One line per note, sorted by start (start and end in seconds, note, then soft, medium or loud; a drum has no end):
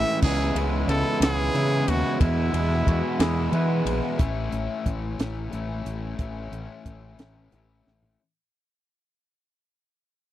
0.00 0.20 A2 medium
0.00 0.24 E3 loud
0.00 0.24 G#3 loud
0.00 0.21 A3 loud
0.00 0.21 C#4 medium
0.00 0.25 E4 loud
0.00 0.22 E5 loud
0.22 0.51 C#2 loud
0.22 0.54 C#3 medium
0.22 0.56 E3 loud
0.22 0.56 G#3 loud
0.22 0.57 B3 loud
0.22 0.56 C#4 loud
0.22 0.57 E4 loud
0.22 0.59 G#4 loud
0.22 kick loud
0.22 crash loud
0.55 0.84 C#2 medium
0.55 0.87 C#3 medium
0.55 0.89 E3 medium
0.55 0.89 G#3 medium
0.55 0.90 B3 medium
0.55 0.90 C#4 loud
0.55 0.91 E4 loud
0.55 ride medium
0.88 1.02 C#2 loud
0.88 1.21 C#3 medium
0.88 1.23 E3 medium
0.88 1.23 G#3 medium
0.88 1.21 B3 medium
0.88 1.23 C#4 medium
0.88 1.24 E4 medium
0.88 1.23 A4 loud
0.88 ride medium
1.20 1.49 C#2 loud
1.20 1.53 C#3 loud
1.20 1.55 E3 loud
1.20 1.56 G#3 loud
1.20 1.55 B3 loud
1.20 1.90 G#4 loud
1.20 snare loud
1.20 ride loud
1.24 1.55 C#4 loud
1.24 1.57 E4 loud
1.54 1.83 C#3 medium
1.54 2.18 C#3 medium
1.54 2.20 E3 medium
1.54 2.21 G#3 medium
1.54 2.19 B3 loud
1.54 2.19 C#4 loud
1.54 2.21 E4 loud
1.54 ride medium
1.88 2.02 D#2 loud
1.88 2.20 F#4 loud
1.88 ride medium
2.19 2.51 E2 loud
2.19 2.49 E2 loud
2.19 2.52 B2 medium
2.19 2.53 E3 medium
2.19 2.53 G#3 medium
2.19 2.53 B3 loud
2.19 3.82 E4 loud
2.19 2.54 E4 loud
2.19 kick loud
2.19 ride loud
2.52 2.85 E2 loud
2.52 2.82 E2 medium
2.52 2.85 B2 medium
2.52 2.86 E3 medium
2.52 2.86 G#3 loud
2.52 2.87 B3 loud
2.52 2.87 E4 loud
2.52 ride medium
2.86 3.17 E2 medium
2.86 3.01 E2 medium
2.86 3.18 B2 medium
2.86 3.18 E3 medium
2.86 3.19 G#3 medium
2.86 3.20 B3 medium
2.86 3.20 E4 medium
2.86 3.21 F#4 medium
2.86 kick medium
2.86 ride medium
3.19 3.50 E2 medium
3.19 3.48 E2 loud
3.19 3.52 B2 medium
3.19 3.51 E3 loud
3.19 3.52 G#3 loud
3.19 3.53 B3 loud
3.19 3.53 E4 loud
3.19 3.51 G#4 loud
3.19 snare loud
3.19 ride loud
3.51 4.16 E2 medium
3.51 4.17 B2 medium
3.51 3.81 E3 loud
3.51 4.17 E3 loud
3.51 4.17 G#3 medium
3.51 4.18 B3 loud
3.51 4.18 E4 loud
3.51 4.16 B4 loud
3.51 ride medium
3.85 4.00 A#1 medium
3.85 ride medium
4.18 4.48 A1 medium
4.18 5.51 A2 medium
4.18 5.52 E3 medium
4.18 5.53 A3 medium
4.18 5.54 C#4 medium
4.18 5.55 E4 medium
4.18 kick loud
4.18 closed hi-hat medium
4.52 4.67 A1 medium
4.52 closed hi-hat medium
4.86 5.15 A1 medium
4.86 kick medium
4.86 closed hi-hat medium
5.19 5.48 A1 medium
5.19 snare loud
5.19 closed hi-hat medium
5.51 5.81 A1 medium
5.51 6.18 A2 medium
5.51 6.19 E3 medium
5.51 6.21 A3 medium
5.51 6.21 C#4 medium
5.51 6.22 E4 medium
5.51 closed hi-hat medium
5.85 6.14 A1 medium
5.85 closed hi-hat medium
6.19 6.48 A1 medium
6.19 7.51 A2 medium
6.19 7.51 E3 medium
6.19 7.52 A3 medium
6.19 7.52 C#4 medium
6.19 kick loud
6.19 closed hi-hat medium
6.23 7.53 E4 medium
6.52 6.66 A1 medium
6.52 closed hi-hat medium
6.86 7.15 A1 loud
6.86 kick medium
6.86 closed hi-hat medium
7.19 7.48 A1 medium
7.19 snare medium
7.19 closed hi-hat medium
7.52 7.82 A1 loud
7.52 8.18 A2 medium
7.52 8.18 E3 medium
7.52 8.19 A3 medium
7.52 8.19 C#4 medium
7.52 closed hi-hat medium
7.57 8.20 E4 medium
7.87 8.15 A1 medium
7.87 snare soft
8.03 floor tom medium